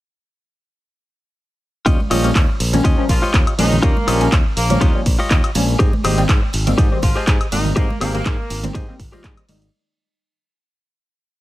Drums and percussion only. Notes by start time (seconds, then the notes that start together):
1.86 kick, closed hi-hat, ride, tambourine
2.00 high conga
2.11 open hi-hat, ride, tambourine, high woodblock
2.24 closed hi-hat, tambourine
2.35 kick, clap, closed hi-hat, ride, tambourine, high conga
2.60 open hi-hat, ride, tambourine
2.73 closed hi-hat, tambourine, high conga, low conga
2.85 kick, closed hi-hat, ride
3.09 kick, open hi-hat, ride, tambourine
3.23 tambourine, high conga
3.34 kick, clap, closed hi-hat, ride
3.47 closed hi-hat, high woodblock
3.59 open hi-hat, ride, tambourine, high conga
3.72 tambourine, low conga
3.83 kick, closed hi-hat, ride
3.97 high conga
4.08 open hi-hat, ride, tambourine, high woodblock
4.21 closed hi-hat, tambourine
4.32 kick, clap, closed hi-hat, ride, tambourine, high conga
4.57 open hi-hat, ride, tambourine
4.70 closed hi-hat, tambourine, high conga, low conga
4.81 kick, closed hi-hat, ride, tambourine, low conga
5.06 kick, open hi-hat, ride, tambourine
5.19 tambourine, high conga
5.31 kick, clap, closed hi-hat, ride
5.44 closed hi-hat, high woodblock
5.55 open hi-hat, ride, tambourine, high conga
5.69 tambourine
5.80 kick, closed hi-hat
5.93 high conga
6.04 open hi-hat, ride, tambourine, high woodblock
6.18 closed hi-hat, tambourine
6.29 kick, clap, closed hi-hat, ride, tambourine, high conga
6.53 open hi-hat, ride, tambourine
6.67 closed hi-hat, tambourine, high conga, low conga
6.78 kick, closed hi-hat, tambourine
7.02 kick, open hi-hat, ride, tambourine
7.15 tambourine, high conga
7.26 kick, clap, closed hi-hat, ride, tambourine
7.41 closed hi-hat, high woodblock
7.52 open hi-hat, ride, tambourine, high conga
7.65 tambourine, low conga
7.77 kick, closed hi-hat, ride, tambourine
7.90 high conga
8.01 open hi-hat, ride, tambourine, high woodblock
8.15 closed hi-hat, tambourine
8.25 kick, clap, closed hi-hat, ride, tambourine, high conga
8.50 open hi-hat, ride, tambourine
8.63 closed hi-hat, tambourine, high conga, low conga
8.75 kick, closed hi-hat, ride, tambourine, low conga
9.00 kick, open hi-hat, ride, tambourine
9.13 closed hi-hat, tambourine, high conga
9.24 kick, clap, closed hi-hat, ride
9.37 closed hi-hat, high woodblock
9.49 open hi-hat, ride, tambourine, high conga
9.62 closed hi-hat